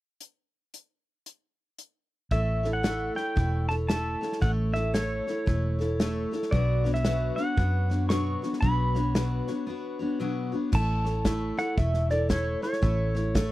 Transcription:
0.21 closed hi-hat
0.74 closed hi-hat
1.26 closed hi-hat
1.79 closed hi-hat
2.31 A1 A3 E4 A4 C#5 E5, kick, snare
2.63 E4 A4 C#5, snare
2.73 F#5
2.83 A3 E4 A4 C#5, snare, hi-hat pedal
3.15 E4 A4 C#5 G5, snare
3.36 E1 A3 E4 A4 C#5, kick, snare
3.69 E4 A4 C#5 A5, snare
3.88 A3 E4 A4 C#5 A5, snare, hi-hat pedal
4.21 E4 A4 C#5, snare
4.32 snare
4.41 A1 A3 E4 A4 C#5 F#5, kick, snare
4.73 E4 A4 C#5 E5, snare
4.94 A3 E4 A4 C#5, snare, hi-hat pedal
5.27 E4 A4 C#5, snare
5.46 E1 A3 E4 A4 C#5, kick, snare
5.79 E4 A4 C#5, snare
6.00 A3 E4 A4 C#5, snare, hi-hat pedal
6.31 E4 A4 C#5, snare
6.43 snare
6.51 B1 B2 F#3 B3 D4 F#4 C#5 D5, kick, snare
6.84 B3 D4 F#4 C#5, snare
6.94 E5, snare
7.04 B2 F#3 B3 D4 F#4 C#5, snare, hi-hat pedal
7.36 B3 D4 F#4 C#5 F#5, snare
7.57 F#2 B3 D4 F#4 C#5, kick, snare
7.90 B3 D4 F#4 C#5, snare
8.09 B2 F#3 B3 D4 F#4 C#5 C#6, snare, hi-hat pedal
8.42 B3 D4 F#4 C#5, snare
8.53 snare
8.61 B1 B2 F#3 B3 D4 F#4 C#5 B5, kick, snare
8.94 B3 D4 F#4 C#5, snare
9.15 B2 F#3 B3 D4 F#4 C#5, snare, hi-hat pedal
9.48 B3 D4 F#4 C#5, snare
9.67 B3 D4 F#4 C#5
9.99 B3 D4 F#4 C#5
10.20 B2 F#3 B3 D4 F#4 C#5
10.52 B3 D4 F#4 C#5
10.72 A1 A3 E4 A4 C#5 A5, kick, snare, crash
11.04 E4 A4 C#5, snare
11.24 A3 E4 A4 C#5, kick, snare, hi-hat pedal
11.57 E4 A4 C#5 F#5, snare
11.77 E1 A3 E4 A4 C#5 E5, kick, snare
11.94 snare
12.10 E4 A4 C#5 D5, snare
12.29 A3 E4 A4 C#5, kick, snare, hi-hat pedal
12.62 E4 A4 C#5, snare
12.73 snare
12.82 A1 A3 E4 A4 C#5, kick, snare
13.15 E4 A4 C#5, snare
13.35 A3 E4 A4 C#5, kick, snare, hi-hat pedal

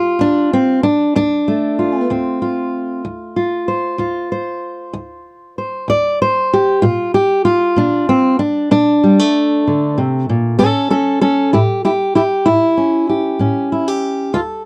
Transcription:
Already playing: F4
0.19 D2 D4
0.53 C4
0.83 D4
1.16 D2 D4
1.48 A3
1.79 F4
2.10 D2 C4
2.42 F4
3.05 D2
3.36 F4
3.68 C5
3.98 D2 F4
4.32 C5
4.93 D2
5.58 C5
5.88 D2 D5
6.22 C5
6.53 G4
6.82 A#2 F4
7.14 G4
7.45 F4
7.76 A#2 D4
8.09 C4
8.39 D4
8.71 A#2 D4
9.04 G3
9.19 A3
9.67 D3
9.98 C3
10.29 A#2
10.59 A2 C#4 A4
10.90 C#4 A4
11.21 C#4 A4
11.53 A2 E4 G4
11.85 E4 G4
12.15 E4 G4
12.46 A2 E4
12.77 C#4
13.09 G4
13.39 A2 C#4
13.72 E4
13.88 G4
14.34 D2 F4 A4

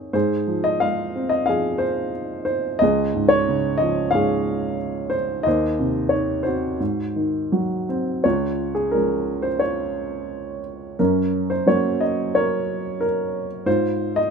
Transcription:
Already playing: G#2 D#3 C4 G#4 A#4 C5
0.13 G#2 G#4 C5
0.47 F3
0.64 D#5
0.80 G#3 F5
1.15 C4
1.29 D#5
1.46 F3 G#4 F5
1.78 C5
2.45 C5
2.79 C#2 G#4 D#5
3.14 G#2
3.29 C#5
3.48 C#3
3.78 F3 D#5
4.11 G#2 F5
4.15 G#4
5.10 C5
5.43 D#2 D#5
5.48 C5
5.79 C3
6.09 D#3 C#5
6.43 C4 F#4 C5
6.80 G#2
7.16 D#3
7.52 F#3
7.89 C4
8.24 C#2 F4 C#5
8.75 G#4
8.92 F3 G#3 C#4 A#4
9.42 C5
9.59 F4 C#5
10.99 F#2 C#4 A#4
11.50 C5
11.66 F#3 A#3 C#4 C#5
12.01 D#5
12.35 A#4 C#5
13.01 A#4
13.66 G#2 F4 C5
14.16 D#5

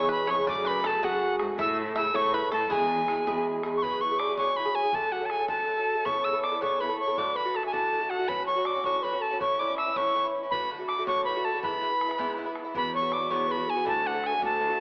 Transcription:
Already playing: E2 B2 G#3 E4 G#4 C#5 C#6
0.09 B4 B5
0.27 F2 G#3 E4 G#4 C#5 C#6, bodhran
0.39 bodhran
0.47 F#2 C#3 A3 F#4 G#4 D5 D6, bodhran
0.57 bodhran
0.65 B4 B5
0.84 C#3 A3 F#4 G#4 A4 A5, bodhran
1.01 F#2 C#3 A3 F#4 G#4 F#5, bodhran
1.39 G#2 A3 F#4 G#4, bodhran
1.50 bodhran
1.58 A2 C#3 A3 E4 A4 E5 E6, bodhran
1.68 bodhran
1.95 C#3 A3 E4 A4 E5 E6, bodhran
2.14 A2 C#3 A3 E4 A4 C#5 C#6, bodhran
2.32 B4 B5
2.50 A2 A3 E4 A4 A5, bodhran
2.62 bodhran
2.69 E2 B2 G#3 E4 G#4 G#5, bodhran
2.81 bodhran
3.08 B2 G#3 E4 G#4, bodhran
3.27 E2 B2 G#3 E4 G#4, bodhran
3.63 E2 G#3 E4 G#4, bodhran
3.77 C#6
3.82 B2 F#3 E4 G#4 B4 B5, bodhran
4.01 B2 F#3 E4 G#4 C#6, bodhran
4.11 F#3 E4 G#4
4.19 D5 D6, bodhran
4.29 F#3 E4 G#4
4.37 B2 F#3 E4 G#4 C#5 C#6, bodhran
4.56 B2 F#3 E4 G#4 B5, bodhran
4.65 F#3 E4 G#4
4.74 G#4 G#5
4.83 F#3 E4 G#4
4.93 D3 F#3 A3 A4 A5, bodhran
5.11 D3 F#3 A3 F#4 A4 F#5, bodhran
5.20 F#3 A3 A4
5.25 A5
5.30 G#4 G#5, bodhran
5.40 F#3 A3 A4
5.48 D3 F#3 A3 A4 A5, bodhran
5.67 D3 F#3 A3 A4, bodhran
5.77 F#3 A3 A4
5.95 F#3 A3 A4
6.05 C#3 B3 E4 A4 C#5 C#6, bodhran
6.24 C#3 B3 E4 A4 E6, bodhran
6.33 B3 E4 A4
6.42 D5 D6, bodhran
6.52 B3 E4 A4
6.60 C#3 B3 E4 A4 C#5 C#6, bodhran
6.79 C#3 B3 E4 A4 B4 B5
6.89 B3 E4 A4
6.98 C#5 C#6
7.07 B3 E4 A4
7.17 A2 D3 A3 F#4 D5 D6, bodhran
7.34 A2 D3 A3 F#4 B4 B5, bodhran
7.45 D3 A3 F#4
7.54 A4 A5, bodhran
7.63 D3 A3 F#4 G#5, bodhran
7.71 A2 D3 A3 F#4 A4 A5, bodhran
7.91 A2 D3 A3 F#4, bodhran
7.99 D3 A3 F#4
8.09 F#4 F#5, bodhran
8.19 D3 A3 F#4
8.27 A2 F#3 C#4 F#4 B4 B5, bodhran
8.45 A2 F#3 C#4 C#5 C#6, bodhran
8.49 F#4
8.56 F#3 C#4 F#4
8.64 D5 D6, bodhran
8.75 F#3 C#4 F#4
8.83 A2 F#3 C#4 F#4 C#5 C#6, bodhran
8.99 A2 B4 C#6
9.03 F#3 C#4 F#4 B5, bodhran
9.12 F#3 C#4 F#4
9.20 A4 A5
9.31 F#3 C#4 F#4
9.39 A2 E3 C#4 E4 C#5 C#6, bodhran
9.59 A2 E3 C#4 E4 D5 D6, bodhran
9.67 E3 C#4 E4
9.77 E5 E6, bodhran
9.86 E3 C#4 E4
9.94 A2 E3 C#4 E4 C#5 C#6, bodhran
10.14 A2 E3 C#4 E4, bodhran
10.24 E3 C#4 E4
10.43 E3 C#4 E4
10.50 A2 D3 A3 F#4 B4 B5, bodhran
10.70 A2 D3 A3 F#4, bodhran
10.79 D3 A3 F#4
10.88 D6, bodhran
10.98 D3 A3 F#4
11.06 A2 D3 A3 F#4 C#5 C#6, bodhran
11.25 A2 D3 A3 F#4 B4 B5, bodhran
11.36 D3 A3 F#4
11.45 A4 A5
11.54 D3 A3 F#4
11.63 G#2 E3 B3 E4 B4 B5, bodhran
11.80 G#2 E3 B3 E4, bodhran
11.90 E3 B3 E4
12.01 bodhran
12.08 E3 B3 E4, bodhran
12.18 G#2 E3 B3 E4, bodhran
12.37 G#2 E3 B3 E4, bodhran
12.45 E3 B3 E4
12.55 bodhran
12.64 E3 B3 E4
12.74 E2 G#2 E3 B3 F#4 B4 B5, bodhran
12.93 G#2 E3 B3 F#4 C#5 C#6
13.02 E3 B3 F#4
13.12 D5 D6, bodhran
13.21 E3 B3 F#4 D5
13.30 E2 G#2 E3 B3 F#4 C#5 C#6, bodhran
13.47 G#2 E3 B3 F#4 B4, bodhran
13.51 B5
13.56 E3 B3 F#4
13.67 G#4 G#5
13.75 E3 B3 F#4
13.84 D2 A2 D3 A3 F#4 A4, bodhran
13.88 A5
14.03 A2 D3 A3 F#4 F#5, bodhran
14.12 D3 A3 F#4
14.24 G#5, bodhran
14.32 D3 A3 F#4
14.40 D2 A2 D3 A3 F#4 A4, bodhran
14.45 A5
14.59 A2 D3 A3 F#4, bodhran
14.68 D3 A3 F#4

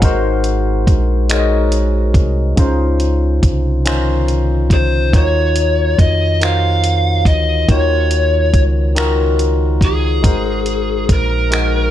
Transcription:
Already playing: F#5
0.02 G#1 G#3 D#4 F#4 A#4 C5, kick, closed hi-hat
0.44 closed hi-hat
0.87 A#1, kick, closed hi-hat
1.30 G#3 D#4 F#4 A#4 C#5, finger snap, closed hi-hat
1.39 D#5
1.72 closed hi-hat
2.14 C2, kick, closed hi-hat
2.56 C#2 C#3 C#4 D#4 F4 C5, kick, closed hi-hat
3.00 closed hi-hat
3.43 C2, kick, closed hi-hat
3.85 D#3 C#4 D#4 F4 C5, finger snap, closed hi-hat
4.28 closed hi-hat
4.70 C5, kick, closed hi-hat
5.12 D#2 D#3 D#4 F4 F#4 C#5, kick, closed hi-hat
5.17 C#5
5.56 closed hi-hat
5.99 F2 D#5, kick, closed hi-hat
6.41 D#3 D#4 F4 F#4 C5 F5, finger snap, closed hi-hat
6.84 closed hi-hat
7.25 D2 D#5, kick, closed hi-hat
7.68 D#2 D#3 D#4 F4 F#4 C#5, kick, closed hi-hat
8.11 closed hi-hat
8.54 C#2, kick, closed hi-hat
8.95 D#3 D#4 F4 F#4 A#4, finger snap, closed hi-hat
9.39 closed hi-hat
9.81 G#4, kick, closed hi-hat
10.22 G#1 G#3 D#4 F#4 A#4 C5, kick, closed hi-hat
10.66 closed hi-hat
11.09 A#1, kick, closed hi-hat
11.13 A#4
11.51 G#3 D#4 F#4 A#4 D#5, finger snap, closed hi-hat

